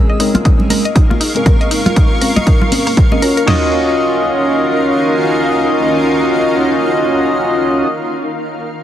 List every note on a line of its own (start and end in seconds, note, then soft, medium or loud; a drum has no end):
0.00 0.17 G#3 medium
0.00 0.17 C4 medium
0.00 0.18 C#4 medium
0.00 0.18 G#4 medium
0.00 0.87 G#4 medium
0.00 3.48 A#4 medium
0.00 3.48 F5 medium
0.08 0.16 D#5 medium
0.08 3.48 C#6 medium
0.19 0.68 G#3 medium
0.19 0.68 C4 medium
0.19 0.68 C#4 medium
0.19 0.29 D#4 medium
0.19 0.68 A#4 medium
0.19 open hi-hat medium
0.34 0.44 F4 medium
0.34 closed hi-hat medium
0.34 high conga medium
0.34 low conga medium
0.45 0.51 D#4 medium
0.45 kick loud
0.45 closed hi-hat medium
0.60 low conga medium
0.70 0.83 G#3 medium
0.70 0.83 C4 medium
0.70 0.83 C#4 medium
0.70 0.76 A#4 medium
0.70 0.83 A#4 medium
0.70 open hi-hat loud
0.70 high conga medium
0.85 0.92 D#5 medium
0.85 closed hi-hat soft
0.95 1.05 D#4 medium
0.95 kick medium
0.95 closed hi-hat medium
1.10 1.20 F4 medium
1.10 high conga medium
1.21 1.26 D#4 medium
1.21 open hi-hat medium
1.35 2.18 G#3 medium
1.35 2.19 C4 medium
1.35 2.19 C#4 medium
1.35 2.20 A#4 medium
1.35 closed hi-hat medium
1.46 1.52 A#4 medium
1.46 kick loud
1.46 closed hi-hat medium
1.46 high conga medium
1.61 1.67 D#5 medium
1.61 closed hi-hat soft
1.71 1.81 D#4 medium
1.71 open hi-hat medium
1.86 1.96 F4 medium
1.86 closed hi-hat medium
1.86 high conga medium
1.86 low conga medium
1.96 2.02 D#4 medium
1.96 kick medium
1.96 closed hi-hat medium
2.21 2.34 G#3 medium
2.21 2.34 C4 medium
2.21 2.35 C#4 medium
2.21 2.27 A#4 medium
2.21 2.35 A#4 medium
2.21 open hi-hat medium
2.36 2.43 D#5 medium
2.36 closed hi-hat soft
2.36 high conga medium
2.36 low conga medium
2.47 2.56 D#4 medium
2.47 kick loud
2.47 closed hi-hat medium
2.61 2.71 F4 medium
2.61 low conga medium
2.71 3.08 G#3 medium
2.71 3.08 C4 medium
2.71 3.09 C#4 medium
2.71 3.09 A#4 medium
2.71 open hi-hat loud
2.71 high conga medium
2.87 2.91 A#3 medium
2.87 open hi-hat medium
2.97 kick medium
2.97 closed hi-hat medium
3.12 3.20 G#3 medium
3.12 3.20 C4 medium
3.12 3.20 C#4 medium
3.12 3.20 A#4 medium
3.12 3.19 D#5 medium
3.12 high conga medium
3.22 3.45 C#4 medium
3.22 3.46 F4 medium
3.22 3.47 F#4 medium
3.22 3.32 A#4 loud
3.22 3.73 C#5 medium
3.22 open hi-hat medium
3.37 3.44 A#4 medium
3.37 closed hi-hat medium
3.46 7.85 C#4 medium
3.46 3.71 D#4 medium
3.46 7.87 D#4 medium
3.46 7.86 F4 medium
3.46 7.87 F#4 medium
3.46 7.88 D#5 medium
3.46 snare medium
3.46 floor tom medium
3.46 crash medium
3.56 7.96 A#4 medium
3.65 8.04 F5 medium